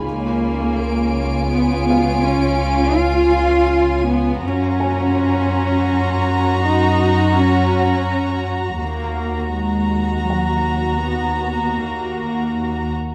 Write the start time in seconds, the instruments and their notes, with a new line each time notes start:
Already playing: felt piano G#4 G#5
0.01 double bass section C#2, cello section A#3, violin section F4 C#5 G#5
0.79 violin section D7
1.50 cello section B3
1.90 felt piano F5
2.22 cello section C#4
2.94 cello section F4
3.23 violin section D#7
4.06 cello section B3
4.41 double bass section F#2, cello section C#4, violin section F#4 A#5 C6
4.80 felt piano G#5
5.89 violin section C#6
6.62 cello section D#4
7.34 cello section C#4
8.80 double bass section D#2, cello section A#3, violin section F#4 A#5
9.53 cello section G#3
10.26 cello section F#3, felt piano F#5
10.99 cello section B3
11.73 cello section A#3